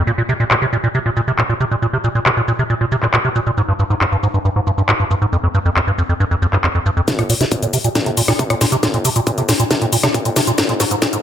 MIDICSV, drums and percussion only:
0, 0, Header, 1, 2, 480
1, 0, Start_track
1, 0, Tempo, 437956
1, 79, Time_signature, 4, 2, 24, 8
1, 12299, End_track
2, 0, Start_track
2, 0, Title_t, "Drums"
2, 78, Note_on_c, 9, 82, 40
2, 188, Note_off_c, 9, 82, 0
2, 318, Note_on_c, 9, 82, 72
2, 427, Note_off_c, 9, 82, 0
2, 438, Note_on_c, 9, 82, 31
2, 547, Note_off_c, 9, 82, 0
2, 558, Note_on_c, 9, 39, 107
2, 558, Note_on_c, 9, 82, 42
2, 667, Note_off_c, 9, 39, 0
2, 667, Note_off_c, 9, 82, 0
2, 677, Note_on_c, 9, 82, 29
2, 787, Note_off_c, 9, 82, 0
2, 798, Note_on_c, 9, 82, 73
2, 907, Note_off_c, 9, 82, 0
2, 918, Note_on_c, 9, 82, 31
2, 1027, Note_off_c, 9, 82, 0
2, 1037, Note_on_c, 9, 82, 42
2, 1147, Note_off_c, 9, 82, 0
2, 1278, Note_on_c, 9, 82, 76
2, 1387, Note_off_c, 9, 82, 0
2, 1398, Note_on_c, 9, 82, 31
2, 1508, Note_off_c, 9, 82, 0
2, 1518, Note_on_c, 9, 39, 102
2, 1518, Note_on_c, 9, 82, 39
2, 1628, Note_off_c, 9, 39, 0
2, 1628, Note_off_c, 9, 82, 0
2, 1639, Note_on_c, 9, 82, 28
2, 1748, Note_off_c, 9, 82, 0
2, 1758, Note_on_c, 9, 82, 73
2, 1868, Note_off_c, 9, 82, 0
2, 1879, Note_on_c, 9, 82, 31
2, 1988, Note_off_c, 9, 82, 0
2, 1999, Note_on_c, 9, 82, 41
2, 2108, Note_off_c, 9, 82, 0
2, 2238, Note_on_c, 9, 82, 75
2, 2348, Note_off_c, 9, 82, 0
2, 2358, Note_on_c, 9, 82, 31
2, 2468, Note_off_c, 9, 82, 0
2, 2478, Note_on_c, 9, 39, 108
2, 2478, Note_on_c, 9, 82, 40
2, 2587, Note_off_c, 9, 39, 0
2, 2587, Note_off_c, 9, 82, 0
2, 2598, Note_on_c, 9, 82, 30
2, 2708, Note_off_c, 9, 82, 0
2, 2718, Note_on_c, 9, 82, 74
2, 2827, Note_off_c, 9, 82, 0
2, 2838, Note_on_c, 9, 82, 31
2, 2947, Note_off_c, 9, 82, 0
2, 2958, Note_on_c, 9, 82, 40
2, 3068, Note_off_c, 9, 82, 0
2, 3197, Note_on_c, 9, 82, 76
2, 3307, Note_off_c, 9, 82, 0
2, 3317, Note_on_c, 9, 39, 32
2, 3317, Note_on_c, 9, 82, 31
2, 3427, Note_off_c, 9, 39, 0
2, 3427, Note_off_c, 9, 82, 0
2, 3438, Note_on_c, 9, 39, 101
2, 3438, Note_on_c, 9, 82, 41
2, 3547, Note_off_c, 9, 39, 0
2, 3547, Note_off_c, 9, 82, 0
2, 3558, Note_on_c, 9, 82, 28
2, 3667, Note_off_c, 9, 82, 0
2, 3677, Note_on_c, 9, 82, 71
2, 3787, Note_off_c, 9, 82, 0
2, 3797, Note_on_c, 9, 82, 31
2, 3907, Note_off_c, 9, 82, 0
2, 3918, Note_on_c, 9, 82, 39
2, 4028, Note_off_c, 9, 82, 0
2, 4157, Note_on_c, 9, 82, 72
2, 4267, Note_off_c, 9, 82, 0
2, 4278, Note_on_c, 9, 82, 30
2, 4387, Note_off_c, 9, 82, 0
2, 4398, Note_on_c, 9, 39, 106
2, 4398, Note_on_c, 9, 82, 42
2, 4508, Note_off_c, 9, 39, 0
2, 4508, Note_off_c, 9, 82, 0
2, 4518, Note_on_c, 9, 82, 29
2, 4628, Note_off_c, 9, 82, 0
2, 4638, Note_on_c, 9, 82, 73
2, 4747, Note_off_c, 9, 82, 0
2, 4757, Note_on_c, 9, 82, 30
2, 4867, Note_off_c, 9, 82, 0
2, 4878, Note_on_c, 9, 82, 39
2, 4987, Note_off_c, 9, 82, 0
2, 5118, Note_on_c, 9, 82, 70
2, 5227, Note_off_c, 9, 82, 0
2, 5238, Note_on_c, 9, 82, 30
2, 5347, Note_off_c, 9, 82, 0
2, 5358, Note_on_c, 9, 39, 106
2, 5358, Note_on_c, 9, 82, 40
2, 5467, Note_off_c, 9, 39, 0
2, 5467, Note_off_c, 9, 82, 0
2, 5478, Note_on_c, 9, 82, 28
2, 5588, Note_off_c, 9, 82, 0
2, 5598, Note_on_c, 9, 82, 70
2, 5708, Note_off_c, 9, 82, 0
2, 5718, Note_on_c, 9, 82, 30
2, 5828, Note_off_c, 9, 82, 0
2, 5838, Note_on_c, 9, 82, 39
2, 5948, Note_off_c, 9, 82, 0
2, 6078, Note_on_c, 9, 82, 68
2, 6187, Note_off_c, 9, 82, 0
2, 6198, Note_on_c, 9, 82, 29
2, 6308, Note_off_c, 9, 82, 0
2, 6318, Note_on_c, 9, 39, 110
2, 6318, Note_on_c, 9, 82, 39
2, 6428, Note_off_c, 9, 39, 0
2, 6428, Note_off_c, 9, 82, 0
2, 6438, Note_on_c, 9, 82, 28
2, 6548, Note_off_c, 9, 82, 0
2, 6558, Note_on_c, 9, 82, 69
2, 6668, Note_off_c, 9, 82, 0
2, 6679, Note_on_c, 9, 82, 29
2, 6788, Note_off_c, 9, 82, 0
2, 6798, Note_on_c, 9, 82, 38
2, 6908, Note_off_c, 9, 82, 0
2, 6919, Note_on_c, 9, 82, 28
2, 7028, Note_off_c, 9, 82, 0
2, 7038, Note_on_c, 9, 82, 68
2, 7148, Note_off_c, 9, 82, 0
2, 7158, Note_on_c, 9, 39, 34
2, 7158, Note_on_c, 9, 82, 29
2, 7268, Note_off_c, 9, 39, 0
2, 7268, Note_off_c, 9, 82, 0
2, 7278, Note_on_c, 9, 39, 108
2, 7278, Note_on_c, 9, 82, 38
2, 7388, Note_off_c, 9, 39, 0
2, 7388, Note_off_c, 9, 82, 0
2, 7398, Note_on_c, 9, 82, 27
2, 7508, Note_off_c, 9, 82, 0
2, 7518, Note_on_c, 9, 82, 68
2, 7627, Note_off_c, 9, 82, 0
2, 7638, Note_on_c, 9, 82, 29
2, 7747, Note_off_c, 9, 82, 0
2, 7757, Note_on_c, 9, 38, 45
2, 7757, Note_on_c, 9, 42, 79
2, 7757, Note_on_c, 9, 82, 37
2, 7758, Note_on_c, 9, 36, 111
2, 7867, Note_off_c, 9, 36, 0
2, 7867, Note_off_c, 9, 38, 0
2, 7867, Note_off_c, 9, 42, 0
2, 7867, Note_off_c, 9, 82, 0
2, 7878, Note_on_c, 9, 37, 55
2, 7878, Note_on_c, 9, 42, 51
2, 7987, Note_off_c, 9, 37, 0
2, 7987, Note_off_c, 9, 42, 0
2, 7997, Note_on_c, 9, 46, 102
2, 7997, Note_on_c, 9, 82, 65
2, 8107, Note_off_c, 9, 46, 0
2, 8107, Note_off_c, 9, 82, 0
2, 8118, Note_on_c, 9, 38, 42
2, 8118, Note_on_c, 9, 42, 52
2, 8118, Note_on_c, 9, 82, 29
2, 8227, Note_off_c, 9, 38, 0
2, 8227, Note_off_c, 9, 42, 0
2, 8227, Note_off_c, 9, 82, 0
2, 8237, Note_on_c, 9, 42, 80
2, 8237, Note_on_c, 9, 82, 38
2, 8238, Note_on_c, 9, 36, 113
2, 8347, Note_off_c, 9, 42, 0
2, 8347, Note_off_c, 9, 82, 0
2, 8348, Note_off_c, 9, 36, 0
2, 8357, Note_on_c, 9, 42, 56
2, 8357, Note_on_c, 9, 82, 28
2, 8467, Note_off_c, 9, 42, 0
2, 8467, Note_off_c, 9, 82, 0
2, 8477, Note_on_c, 9, 46, 98
2, 8477, Note_on_c, 9, 82, 68
2, 8587, Note_off_c, 9, 46, 0
2, 8587, Note_off_c, 9, 82, 0
2, 8597, Note_on_c, 9, 42, 54
2, 8597, Note_on_c, 9, 82, 29
2, 8707, Note_off_c, 9, 42, 0
2, 8707, Note_off_c, 9, 82, 0
2, 8717, Note_on_c, 9, 38, 50
2, 8717, Note_on_c, 9, 42, 78
2, 8717, Note_on_c, 9, 82, 36
2, 8718, Note_on_c, 9, 36, 113
2, 8827, Note_off_c, 9, 38, 0
2, 8827, Note_off_c, 9, 42, 0
2, 8827, Note_off_c, 9, 82, 0
2, 8828, Note_off_c, 9, 36, 0
2, 8837, Note_on_c, 9, 42, 55
2, 8947, Note_off_c, 9, 42, 0
2, 8957, Note_on_c, 9, 46, 107
2, 8957, Note_on_c, 9, 82, 69
2, 9067, Note_off_c, 9, 46, 0
2, 9067, Note_off_c, 9, 82, 0
2, 9078, Note_on_c, 9, 37, 75
2, 9078, Note_on_c, 9, 38, 48
2, 9078, Note_on_c, 9, 46, 61
2, 9078, Note_on_c, 9, 82, 29
2, 9187, Note_off_c, 9, 37, 0
2, 9187, Note_off_c, 9, 38, 0
2, 9187, Note_off_c, 9, 46, 0
2, 9187, Note_off_c, 9, 82, 0
2, 9198, Note_on_c, 9, 36, 115
2, 9198, Note_on_c, 9, 42, 79
2, 9198, Note_on_c, 9, 82, 38
2, 9308, Note_off_c, 9, 36, 0
2, 9308, Note_off_c, 9, 42, 0
2, 9308, Note_off_c, 9, 82, 0
2, 9318, Note_on_c, 9, 37, 72
2, 9318, Note_on_c, 9, 42, 61
2, 9318, Note_on_c, 9, 82, 27
2, 9427, Note_off_c, 9, 37, 0
2, 9427, Note_off_c, 9, 42, 0
2, 9427, Note_off_c, 9, 82, 0
2, 9438, Note_on_c, 9, 38, 55
2, 9438, Note_on_c, 9, 46, 105
2, 9438, Note_on_c, 9, 82, 71
2, 9547, Note_off_c, 9, 38, 0
2, 9547, Note_off_c, 9, 46, 0
2, 9547, Note_off_c, 9, 82, 0
2, 9558, Note_on_c, 9, 42, 52
2, 9558, Note_on_c, 9, 82, 28
2, 9668, Note_off_c, 9, 42, 0
2, 9668, Note_off_c, 9, 82, 0
2, 9678, Note_on_c, 9, 36, 117
2, 9679, Note_on_c, 9, 38, 55
2, 9679, Note_on_c, 9, 42, 79
2, 9679, Note_on_c, 9, 82, 38
2, 9788, Note_off_c, 9, 36, 0
2, 9788, Note_off_c, 9, 38, 0
2, 9788, Note_off_c, 9, 42, 0
2, 9788, Note_off_c, 9, 82, 0
2, 9798, Note_on_c, 9, 42, 49
2, 9908, Note_off_c, 9, 42, 0
2, 9918, Note_on_c, 9, 46, 103
2, 9918, Note_on_c, 9, 82, 72
2, 10027, Note_off_c, 9, 46, 0
2, 10027, Note_off_c, 9, 82, 0
2, 10037, Note_on_c, 9, 42, 53
2, 10037, Note_on_c, 9, 82, 29
2, 10147, Note_off_c, 9, 42, 0
2, 10147, Note_off_c, 9, 82, 0
2, 10158, Note_on_c, 9, 36, 119
2, 10158, Note_on_c, 9, 42, 79
2, 10158, Note_on_c, 9, 82, 38
2, 10267, Note_off_c, 9, 42, 0
2, 10267, Note_off_c, 9, 82, 0
2, 10268, Note_off_c, 9, 36, 0
2, 10278, Note_on_c, 9, 42, 54
2, 10278, Note_on_c, 9, 82, 28
2, 10387, Note_off_c, 9, 42, 0
2, 10387, Note_off_c, 9, 82, 0
2, 10398, Note_on_c, 9, 38, 65
2, 10398, Note_on_c, 9, 46, 112
2, 10398, Note_on_c, 9, 82, 67
2, 10507, Note_off_c, 9, 38, 0
2, 10507, Note_off_c, 9, 46, 0
2, 10507, Note_off_c, 9, 82, 0
2, 10518, Note_on_c, 9, 42, 53
2, 10518, Note_on_c, 9, 82, 31
2, 10627, Note_off_c, 9, 42, 0
2, 10627, Note_off_c, 9, 82, 0
2, 10638, Note_on_c, 9, 36, 117
2, 10639, Note_on_c, 9, 38, 63
2, 10639, Note_on_c, 9, 42, 77
2, 10639, Note_on_c, 9, 82, 38
2, 10748, Note_off_c, 9, 36, 0
2, 10748, Note_off_c, 9, 38, 0
2, 10748, Note_off_c, 9, 42, 0
2, 10748, Note_off_c, 9, 82, 0
2, 10759, Note_on_c, 9, 42, 53
2, 10868, Note_off_c, 9, 42, 0
2, 10878, Note_on_c, 9, 46, 108
2, 10878, Note_on_c, 9, 82, 71
2, 10988, Note_off_c, 9, 46, 0
2, 10988, Note_off_c, 9, 82, 0
2, 10998, Note_on_c, 9, 37, 79
2, 10998, Note_on_c, 9, 38, 61
2, 10998, Note_on_c, 9, 82, 29
2, 11108, Note_off_c, 9, 37, 0
2, 11108, Note_off_c, 9, 38, 0
2, 11108, Note_off_c, 9, 82, 0
2, 11118, Note_on_c, 9, 36, 122
2, 11118, Note_on_c, 9, 42, 77
2, 11118, Note_on_c, 9, 82, 38
2, 11228, Note_off_c, 9, 36, 0
2, 11228, Note_off_c, 9, 42, 0
2, 11228, Note_off_c, 9, 82, 0
2, 11238, Note_on_c, 9, 42, 61
2, 11238, Note_on_c, 9, 82, 28
2, 11348, Note_off_c, 9, 42, 0
2, 11348, Note_off_c, 9, 82, 0
2, 11358, Note_on_c, 9, 38, 71
2, 11358, Note_on_c, 9, 46, 106
2, 11358, Note_on_c, 9, 82, 70
2, 11468, Note_off_c, 9, 38, 0
2, 11468, Note_off_c, 9, 46, 0
2, 11468, Note_off_c, 9, 82, 0
2, 11478, Note_on_c, 9, 42, 52
2, 11478, Note_on_c, 9, 82, 30
2, 11588, Note_off_c, 9, 42, 0
2, 11588, Note_off_c, 9, 82, 0
2, 11598, Note_on_c, 9, 36, 122
2, 11598, Note_on_c, 9, 38, 71
2, 11598, Note_on_c, 9, 42, 77
2, 11598, Note_on_c, 9, 82, 40
2, 11707, Note_off_c, 9, 38, 0
2, 11707, Note_off_c, 9, 42, 0
2, 11707, Note_off_c, 9, 82, 0
2, 11708, Note_off_c, 9, 36, 0
2, 11717, Note_on_c, 9, 42, 49
2, 11827, Note_off_c, 9, 42, 0
2, 11838, Note_on_c, 9, 38, 76
2, 11838, Note_on_c, 9, 46, 113
2, 11838, Note_on_c, 9, 82, 71
2, 11947, Note_off_c, 9, 38, 0
2, 11947, Note_off_c, 9, 46, 0
2, 11947, Note_off_c, 9, 82, 0
2, 11958, Note_on_c, 9, 42, 50
2, 11958, Note_on_c, 9, 82, 31
2, 12067, Note_off_c, 9, 42, 0
2, 12067, Note_off_c, 9, 82, 0
2, 12078, Note_on_c, 9, 36, 125
2, 12078, Note_on_c, 9, 38, 79
2, 12078, Note_on_c, 9, 42, 76
2, 12078, Note_on_c, 9, 82, 41
2, 12187, Note_off_c, 9, 38, 0
2, 12187, Note_off_c, 9, 42, 0
2, 12187, Note_off_c, 9, 82, 0
2, 12188, Note_off_c, 9, 36, 0
2, 12198, Note_on_c, 9, 42, 51
2, 12198, Note_on_c, 9, 82, 30
2, 12299, Note_off_c, 9, 42, 0
2, 12299, Note_off_c, 9, 82, 0
2, 12299, End_track
0, 0, End_of_file